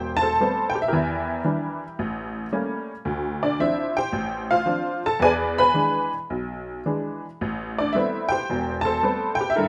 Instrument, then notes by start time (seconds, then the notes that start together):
honky-tonk piano
Already playing: E1 G4 C5 G5
0.17 A5
0.22 A4 C5
0.41 G3 A3 B3 C4
0.70 G5
0.75 G4
0.82 E5
0.88 E4 G4 A#4
0.93 E2 E3
1.44 E3 G3 D4
1.99 A1
2.52 G3 A3 A#3 C#4
3.05 D2
3.43 D4 D5
3.60 F3 C4 D4 E4 E5
3.97 G4 C5 G5
4.12 A1
4.51 F4 C5 F5
4.66 F3 C4 D4
5.06 A4 A5
5.20 E2 G#4 B4 D5 G#5
5.58 B4 G#5 B5
5.74 E3 G#3 D4
6.30 B1
6.86 E3 G#3 D4
7.41 A1
7.79 D4 D5
7.93 G3 A3 B3 C4 E4 E5
8.29 G4 C5 G5
8.50 E1 E2
8.81 A4 A5
8.86 C5
9.03 G3 A3 B3 C4
9.35 G5
9.41 G4
9.50 E5
9.55 G2 E4 A4 A#4